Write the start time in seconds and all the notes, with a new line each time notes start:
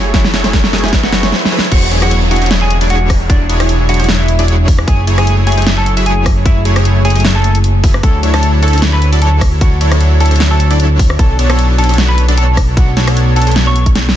Already playing: F#1 F#3 A3 E4 F#4 G#4 C#5 E5, riser
0.13 E3 F#3 A3 E4 F#4 G#4 C#5, kick, snare, closed hi-hat
0.25 snare
0.34 F#3 A3 E4 G#4 C#5, snare, closed hi-hat
0.43 F#3 A3 E4 F#4 G#4 C#5, snare, closed hi-hat
0.53 kick, snare, closed hi-hat
0.64 snare
0.73 F#3 G#3 A3 E4 G#4 C#5, snare, closed hi-hat
0.78 closed hi-hat
0.83 F#3 A3 E4 F#4 G#4 C#5 E5, snare, closed hi-hat
0.88 closed hi-hat
0.93 kick, snare, closed hi-hat, swell
1.03 F#3 F#4, snare
1.12 snare, closed hi-hat
1.22 A3 E4 F#4 G#4 C#5, snare, closed hi-hat
1.32 snare
1.45 snare
1.52 F#3 A3 E4 G#4 B4
1.59 snare
1.72 E1 F#3 G#3 D4 E4 F#4 G#4 C#5 F#5, kick, closed hi-hat, crash, downlifter
1.91 F#3 D4 E4 G#4 C#5, closed hi-hat
2.02 F#3 D4 E4 F#4 G#4 C#5 F#5, cross-stick, closed hi-hat
2.11 closed hi-hat
2.31 F#3 D4 E4 F#4 G#4 C#5 F#5, closed hi-hat
2.36 closed hi-hat
2.42 F#3 D4 E4 G#4 C#5, closed hi-hat
2.46 closed hi-hat
2.51 snare, closed hi-hat
2.61 G#4 G#5
2.71 closed hi-hat
2.81 F#3 D4 E4 G#4 D5, closed hi-hat
2.90 F#3 D4 E4 F#4 G#4 C#5 F#5, closed hi-hat
3.10 kick, cross-stick, open hi-hat
3.29 F#3 D4 E4 G#4 C#5 D5, kick, closed hi-hat
3.49 F#3 D4 E4 G#4 C#5, closed hi-hat
3.60 F#3 D4 E4 G#4 C#5, cross-stick, closed hi-hat
3.69 closed hi-hat
3.89 F#3 D4 E4 F#4 G#4 C#5 F#5, closed hi-hat
3.94 closed hi-hat
3.99 F#3 D4 E4 G#4 C#5, closed hi-hat
4.04 closed hi-hat
4.09 snare, closed hi-hat
4.19 E4 E5
4.28 closed hi-hat
4.39 F#3 D4 E4 G#4 D5, closed hi-hat
4.48 F#3 D4 E4 G#4 C#5, closed hi-hat
4.68 kick, open hi-hat
4.79 cross-stick
4.87 F#1 F#3 A3 E4 G#4 C#5 G#5, kick, closed hi-hat
5.07 F#3 A3 E4 G#4 C#5, closed hi-hat
5.18 F#3 A3 E4 G#4 C#5 G#5, cross-stick, closed hi-hat
5.27 closed hi-hat
5.47 F#3 A3 E4 G#4 C#5 G#5, closed hi-hat
5.52 closed hi-hat
5.57 F#3 A3 E4 G#4 C#5, closed hi-hat
5.62 closed hi-hat
5.67 snare, closed hi-hat
5.77 A4 A5
5.86 closed hi-hat
5.97 F#3 A3 E4 G#4 E5, closed hi-hat
6.06 F#3 A3 E4 G#4 C#5 G#5, closed hi-hat
6.26 kick, cross-stick, open hi-hat
6.45 F#3 A3 E4 G#4 C#5 E5, kick, closed hi-hat
6.65 F#3 A3 E4 G#4 C#5, closed hi-hat
6.76 F#3 A3 E4 G#4 C#5, cross-stick, closed hi-hat
6.85 closed hi-hat
7.05 F#3 A3 E4 G#4 C#5 G#5, closed hi-hat
7.10 closed hi-hat
7.15 F#3 A3 E4 G#4 C#5, closed hi-hat
7.20 closed hi-hat
7.25 snare, closed hi-hat
7.35 A4 A5
7.44 closed hi-hat
7.55 closed hi-hat
7.64 closed hi-hat
7.83 F#3 A3 E4 G#4 B4, kick, open hi-hat
7.94 cross-stick
8.03 D2 D3 F#3 D4 E4 F#4 A4 C#5 A5, kick, closed hi-hat, ride
8.23 F#3 D4 E4 A4 C#5, closed hi-hat
8.34 F#3 D4 E4 A4 C#5 A5, cross-stick, closed hi-hat
8.43 closed hi-hat
8.62 F#3 D4 E4 A4 C#5 A5, closed hi-hat
8.68 closed hi-hat
8.73 F#3 D4 E4 A4 C#5, closed hi-hat
8.78 closed hi-hat
8.82 snare, closed hi-hat
8.93 B4 B5
9.02 closed hi-hat
9.12 F#3 D4 E4 A4 D5, closed hi-hat
9.22 F#3 D4 E4 A4 C#5 A5, closed hi-hat
9.41 kick, cross-stick, open hi-hat
9.61 F#3 D4 E4 F#4 A4 C#5 F#5, kick, closed hi-hat, ride
9.81 F#3 D4 E4 A4 C#5, closed hi-hat
9.92 F#3 D4 E4 A4 C#5, cross-stick, closed hi-hat
10.01 closed hi-hat
10.20 F#3 D4 E4 A4 C#5 A5, closed hi-hat
10.26 closed hi-hat
10.31 F#3 D4 E4 A4 C#5, closed hi-hat
10.36 closed hi-hat
10.40 snare, closed hi-hat
10.51 A4 A5
10.60 closed hi-hat
10.71 F#3 D4 E4 A4 D5, closed hi-hat
10.80 F#3 D4 E4 A4 C#5, closed hi-hat
10.99 kick, open hi-hat
11.10 cross-stick
11.19 B1 F#3 A3 B3 D4 A4 C#5 A5, kick, closed hi-hat, ride
11.39 F#3 B3 D4 A4 C#5, closed hi-hat
11.49 F#3 B3 D4 A4 C#5 A5, cross-stick, closed hi-hat
11.59 closed hi-hat
11.78 F#3 B3 D4 A4 C#5 A5, closed hi-hat
11.84 closed hi-hat
11.89 F#3 B3 D4 A4 C#5, closed hi-hat
11.94 closed hi-hat
11.98 snare, closed hi-hat
12.09 B4 B5
12.18 closed hi-hat
12.28 F#3 B3 D4 A4 D5, closed hi-hat
12.37 F#3 B3 D4 A4 C#5 A5, closed hi-hat
12.57 kick, cross-stick, open hi-hat
12.77 F#3 B3 D4 F#4 A4 C#5 F#5, kick, closed hi-hat, ride
12.97 F#3 B3 D4 A4 C#5, snare, closed hi-hat
13.07 F#3 B3 D4 A4 C#5, cross-stick, closed hi-hat
13.17 closed hi-hat
13.36 F#3 B3 D4 A4 C#5 A5, closed hi-hat
13.42 closed hi-hat
13.47 F#3 B3 D4 A4 C#5, closed hi-hat
13.52 closed hi-hat
13.56 snare, closed hi-hat
13.67 C#5 C#6
13.76 closed hi-hat
13.86 kick, closed hi-hat
13.95 snare, closed hi-hat
14.09 snare